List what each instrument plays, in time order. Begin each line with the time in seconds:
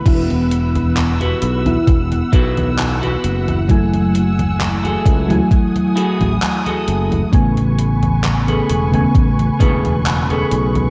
Already playing: string section B4
0.05 fretless electric bass E1, fm electric piano B3 E4, string section F#5 E6, kick, closed hi-hat, crash, high conga
0.30 closed hi-hat, high conga
0.50 muted clean electric guitar stroke, closed hi-hat
0.76 closed hi-hat, high conga
0.96 muted clean electric guitar stroke, clap, closed hi-hat, high conga
1.20 clean electric guitar E4 F#4 G4 B4, closed hi-hat, high conga
1.42 fretless electric bass B1, closed hi-hat
1.65 fm electric piano B3 E4, closed hi-hat, high conga
1.87 fretless electric bass E1, kick, closed hi-hat, high conga
2.12 closed hi-hat, high conga
2.32 fretless electric bass B1, clean electric guitar E4 F#4 G4 B4, kick, closed hi-hat
2.57 closed hi-hat, high conga
2.79 clap, closed hi-hat, high conga
3.02 clean electric guitar E4 F#4 G4 B4, closed hi-hat, high conga
3.24 fretless electric bass F#1, closed hi-hat
3.48 closed hi-hat, high conga
3.68 fm electric piano F#3 A3 E4 G#5, string section A3 G#5 E6, kick, closed hi-hat, high conga
3.94 closed hi-hat, high conga
4.14 muted clean electric guitar stroke, closed hi-hat
4.39 closed hi-hat, high conga
4.59 muted clean electric guitar stroke, clap, closed hi-hat, high conga
4.83 clean electric guitar E4 F#4 G#4 A4, closed hi-hat, high conga
5.05 fretless electric bass C#2, kick, closed hi-hat
5.28 fm electric piano F#3 A3 E4 G#5, closed hi-hat, high conga
5.51 string section D#6, kick, closed hi-hat, high conga
5.76 closed hi-hat, high conga
5.96 clean electric guitar E4 F#4 G#4 A4, closed hi-hat
6.21 fretless electric bass A1, closed hi-hat, high conga
6.42 clap, closed hi-hat, high conga
6.65 clean electric guitar E4 F#4 G#4 A4, closed hi-hat, high conga
6.88 fretless electric bass F#1, closed hi-hat
7.12 closed hi-hat, high conga
7.32 fretless electric bass A1, fm electric piano C#3 A3 B3 G#5, string section B4 G#5 C#6, kick, closed hi-hat, high conga
7.57 closed hi-hat, high conga
7.78 muted clean electric guitar stroke, closed hi-hat
8.03 closed hi-hat, high conga
8.23 muted clean electric guitar stroke, clap, closed hi-hat, high conga
8.47 clean electric guitar C#4 G#4 A4 B4, closed hi-hat, high conga
8.70 fretless electric bass E1, closed hi-hat
8.92 fm electric piano C#3 A3 B3 G#5, closed hi-hat, high conga
9.15 fretless electric bass A1, kick, closed hi-hat, high conga
9.39 closed hi-hat, high conga
9.59 fretless electric bass E1, clean electric guitar C#4 G#4 A4 B4, kick, closed hi-hat
9.85 closed hi-hat, high conga
10.06 clap, closed hi-hat, high conga
10.29 clean electric guitar C#4 G#4 A4 B4, closed hi-hat, high conga
10.51 fretless electric bass B1, closed hi-hat
10.75 closed hi-hat, high conga